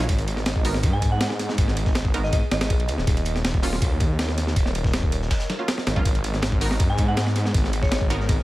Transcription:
Already playing: ambient pad D#5
0.09 detuned saw bass G#1, ambient pad B3 G#4, kick, closed hi-hat, ride
0.18 closed hi-hat, ride
0.28 closed hi-hat, ride
0.37 snare, closed hi-hat
0.46 snare, closed hi-hat, ride
0.56 kick
0.64 synth stab B3 D#4 F#4 A#4, closed hi-hat, open hi-hat
0.74 snare
0.83 detuned saw bass G#2, kick, closed hi-hat, ride
0.93 synth bell G#5
1.02 kick, closed hi-hat, ride
1.12 synth bell F#5
1.21 synth bell F#5, snare, closed hi-hat, ride
1.30 snare
1.39 snare, closed hi-hat, ride
1.49 snare
1.58 detuned saw bass G#1, kick, closed hi-hat, ride
1.68 snare
1.77 closed hi-hat, ride
1.85 kick, snare
1.95 snare, closed hi-hat, ride
2.05 kick
2.14 synth stab B3 D#4 F#4 A#4, closed hi-hat, ride
2.24 synth bell D#5, snare
2.32 detuned saw bass G#1, synth bell D#5, kick, closed hi-hat, ride
2.51 detuned saw bass G#1, synth bell D#5, snare, closed hi-hat, ride
2.61 snare, ride
2.70 detuned saw bass B1, kick, ride
2.80 ride
2.88 detuned saw bass D#2, closed hi-hat, ride
2.98 detuned saw bass D#1, snare
3.07 detuned saw bass D#1, ambient pad A#4 C#5, kick, closed hi-hat, ride
3.17 closed hi-hat, ride
3.25 closed hi-hat, ride
3.36 snare, closed hi-hat
3.45 snare, closed hi-hat, ride
3.54 kick
3.63 synth stab F#3 A#3 C#4 F4, closed hi-hat, open hi-hat
3.73 snare
3.82 detuned saw bass D#2, kick, closed hi-hat, ride
4.00 kick, closed hi-hat, ride
4.19 snare, closed hi-hat, ride
4.29 snare
4.38 snare, closed hi-hat, ride
4.47 snare
4.56 detuned saw bass D#1, kick, closed hi-hat, ride
4.66 snare
4.75 closed hi-hat, ride
4.84 kick, snare
4.94 snare, closed hi-hat, ride
5.03 kick
5.12 closed hi-hat, ride
5.22 snare
5.31 kick, snare, closed hi-hat, ride
5.40 snare, closed hi-hat
5.50 snare, ride
5.59 synth stab F#3 A#3 C#4 F4
5.68 snare, closed hi-hat, ride
5.78 snare
5.87 detuned saw bass G#1, snare, closed hi-hat, ride
5.96 synth stab F#3 A#3 C#4 F4, kick
6.05 detuned saw bass G#1, ambient pad B3 G#4 D#5, kick, closed hi-hat, ride
6.15 closed hi-hat, ride
6.24 closed hi-hat, ride
6.34 snare, closed hi-hat
6.42 snare, closed hi-hat, ride
6.52 kick
6.61 synth stab B3 D#4 F#4 A#4, closed hi-hat, open hi-hat
6.71 snare
6.79 detuned saw bass G#2, kick, closed hi-hat, ride
6.90 synth bell G#5
6.98 kick, closed hi-hat, ride
7.08 synth bell F#5
7.17 snare, closed hi-hat, ride
7.27 snare
7.36 snare, closed hi-hat, ride
7.45 snare
7.54 detuned saw bass G#1, kick, closed hi-hat, ride
7.64 snare
7.73 closed hi-hat, ride
7.82 synth bell C#5, kick, snare
7.91 synth bell C#5, snare, closed hi-hat, ride
8.01 kick
8.10 synth stab B3 D#4 F#4 A#4, closed hi-hat, ride
8.20 snare
8.29 detuned saw bass G#1, kick, closed hi-hat, ride

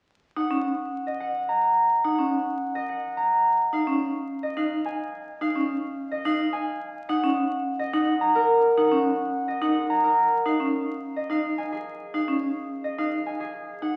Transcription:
0.36 vibraphone D#4, harp F#5
0.51 vibraphone C#4
1.07 harp D#5
1.20 harp F#5
1.49 harp A#5
2.04 vibraphone D#4, harp F#5
2.19 vibraphone C#4
2.75 harp D#5
2.89 harp F#5
3.17 harp A#5
3.73 vibraphone D#4, harp F5
3.87 vibraphone C#4
4.43 harp D#5
4.57 vibraphone D#4, harp F5
4.85 harp G#5
5.41 vibraphone D#4, harp F5
5.55 vibraphone C#4
6.11 harp D#5
6.25 vibraphone D#4, harp F5
6.53 harp G#5
7.09 vibraphone D#4, harp F#5
7.23 vibraphone C#4
7.79 harp D#5
7.93 vibraphone D#4, harp F#5
8.21 harp A#5
8.35 harp A#4
8.77 vibraphone D#4, harp F#5
8.92 vibraphone C#4
9.48 harp D#5
9.62 vibraphone D#4, harp F#5
9.90 harp A#5
10.04 harp A#4
10.46 vibraphone D#4, harp F5
10.60 vibraphone C#4
11.16 harp D#5
11.30 vibraphone D#4, harp F5
11.58 harp G#5
11.72 harp G#4
12.14 vibraphone D#4, harp F5
12.28 vibraphone C#4
12.84 harp D#5
12.98 vibraphone D#4, harp F5
13.26 harp G#5
13.40 harp G#4
13.82 vibraphone D#4, harp F#5

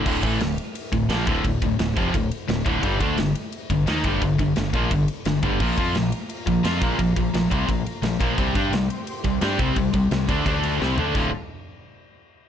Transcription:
0.06 fingered electric bass D1, overdriven electric guitar D2 A2 D3, kick, crash
0.23 fingered electric bass A1, overdriven electric guitar A2 E3 A3, kick, ride
0.40 fingered electric bass D1, overdriven electric guitar D2 A2, snare, ride
0.58 ride
0.75 ride
0.92 fingered electric bass D1, overdriven electric guitar D2 A2, kick, ride
1.09 fingered electric bass A#1, overdriven electric guitar A#2 F3 A#3, snare, ride
1.27 fingered electric bass D1, overdriven electric guitar D2 A2 D3, kick, ride
1.44 fingered electric bass D1, overdriven electric guitar D2 A2, kick, ride
1.62 fingered electric bass D1, overdriven electric guitar D2 A2, kick, ride
1.79 fingered electric bass D1, overdriven electric guitar D2 A2, snare, ride
1.97 fingered electric bass F1, overdriven electric guitar F2 C3 F3, kick, ride
2.14 fingered electric bass D1, overdriven electric guitar D2 A2, kick, ride
2.31 ride
2.48 fingered electric bass D1, overdriven electric guitar D2 A2, snare, ride
2.66 fingered electric bass D1, overdriven electric guitar D2 A2 D3, kick, ride
2.83 fingered electric bass G1, overdriven electric guitar G2 D3 G3, kick, ride
3.00 fingered electric bass D2, overdriven electric guitar D3 A3 D4, kick, ride
3.17 fingered electric bass G1, overdriven electric guitar G2 D3, snare, ride
3.35 ride
3.52 ride
3.70 fingered electric bass G1, overdriven electric guitar G2 D3, kick, ride
3.87 fingered electric bass D#2, overdriven electric guitar D#3 A#3 D#4, snare, ride
4.04 fingered electric bass G1, overdriven electric guitar G2 D3 G3, kick, ride
4.22 fingered electric bass G1, overdriven electric guitar G2 D3, kick, ride
4.39 fingered electric bass G1, overdriven electric guitar G2 D3, kick, ride
4.56 fingered electric bass G1, overdriven electric guitar G2 D3, snare, ride
4.73 fingered electric bass A#1, overdriven electric guitar A#2 F3 A#3, kick, ride
4.91 fingered electric bass G1, overdriven electric guitar G2 D3, kick, ride
5.08 ride
5.25 fingered electric bass G1, overdriven electric guitar G2 D3, snare, ride
5.42 fingered electric bass G1, overdriven electric guitar G2 D3 G3, kick, ride
5.60 fingered electric bass A#1, overdriven electric guitar A#2 F3 A#3, string section A#3 F4 F5 A#5, kick, crash
5.77 fingered electric bass F2, overdriven electric guitar F3 C4 F4, kick, ride
5.95 fingered electric bass A#1, overdriven electric guitar A#2 F3, snare, ride
6.12 ride
6.29 ride
6.47 fingered electric bass A#1, overdriven electric guitar A#2 F3, kick, ride
6.64 fingered electric bass F2, overdriven electric guitar F3 C4 F4, snare, ride
6.81 fingered electric bass A#1, overdriven electric guitar A#2 F3 A#3, kick, ride
6.99 fingered electric bass A#1, overdriven electric guitar A#2 F3, kick, ride
7.16 fingered electric bass A#1, overdriven electric guitar A#2 F3, kick, ride
7.34 fingered electric bass A#1, overdriven electric guitar A#2 F3, snare, ride
7.51 fingered electric bass C2, overdriven electric guitar C3 G3 C4, kick, ride
7.68 fingered electric bass A#1, overdriven electric guitar A#2 F3, kick, ride
7.86 ride
8.02 fingered electric bass A#1, overdriven electric guitar A#2 F3, snare, ride
8.19 fingered electric bass A#1, overdriven electric guitar A#2 F3 A#3, kick, ride
8.37 fingered electric bass C2, overdriven electric guitar C3 G3 C4, string section C4 G4 G5 C6, kick, ride
8.55 fingered electric bass G2, overdriven electric guitar G3 D4 G4, kick, ride
8.72 fingered electric bass C2, overdriven electric guitar C3 G3, snare, ride
8.90 ride
9.07 ride
9.24 fingered electric bass C2, overdriven electric guitar C3 G3, kick, ride
9.41 fingered electric bass G2, overdriven electric guitar G3 D4 G4, snare, ride
9.58 fingered electric bass C2, overdriven electric guitar C3 G3 C4, kick, ride
9.76 fingered electric bass C2, overdriven electric guitar C3 G3, kick, ride
9.94 fingered electric bass C2, overdriven electric guitar C3 G3, kick, ride
10.11 fingered electric bass C2, overdriven electric guitar C3 G3, snare, ride
10.27 fingered electric bass D2, overdriven electric guitar D3 A3 D4, kick, ride
10.44 fingered electric bass D2, overdriven electric guitar D3 A3 D4, string section D4 A4 A5 D6, kick, ride
10.63 ride
10.78 fingered electric bass C2, overdriven electric guitar C3 G3 C4, string section C4 G4 G5 C6
10.82 snare
10.98 fingered electric bass D2, overdriven electric guitar D3 A3 D4, floor tom
11.12 fingered electric bass D1, overdriven electric guitar D2 A2 D3 A3, string section D4 A4 E5 F5, kick, crash
11.16 overdriven electric guitar F4

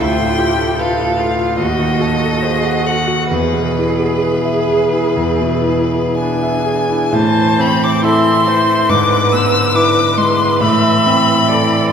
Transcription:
0.00 grand piano D2, cello F4, viola F4, violin G5
0.20 grand piano A2
0.38 grand piano F4, cello G4
0.58 grand piano A4
0.78 cello A4, grand piano B4, violin F5
1.00 grand piano F5
1.19 cello F4, grand piano A4
1.39 grand piano F4
1.58 grand piano D#2, cello F#4, viola F#4, violin D#5
1.79 grand piano D#3
2.00 grand piano F#4, cello A4
2.21 grand piano A4
2.42 cello G#4, grand piano C5
2.65 grand piano F#5
2.86 cello F#4, grand piano A4, violin F#5
3.08 grand piano F#4
3.31 grand piano E2, viola G#4, cello G#4, violin B4
3.53 grand piano B2
3.78 grand piano E4
4.01 grand piano G#4
4.22 viola G#4, grand piano B4
4.45 grand piano E5
4.69 grand piano G#4
4.93 grand piano E4
5.17 grand piano E2, viola E4
5.41 grand piano B2
5.68 grand piano E4
5.94 grand piano G#4
6.18 viola D4, grand piano B4, violin G#5
6.43 grand piano E5
6.66 grand piano G#4
6.90 grand piano E4
7.13 grand piano A2, cello E3, viola C5, violin A5
7.59 grand piano C4, violin B5
7.83 violin D6
8.02 cello E3, grand piano E4 A4, viola E5, violin C6
8.47 grand piano E3, viola C5
8.89 grand piano G#2, cello D3, viola B4, violin D6
9.32 grand piano B3, violin E6
9.74 grand piano E4 B4, viola B4, violin D6
10.17 grand piano G#3, violin C6
10.61 grand piano A2, cello E3, viola E5, violin B5
11.06 grand piano C4
11.48 cello E3, grand piano E4 A4, viola D5

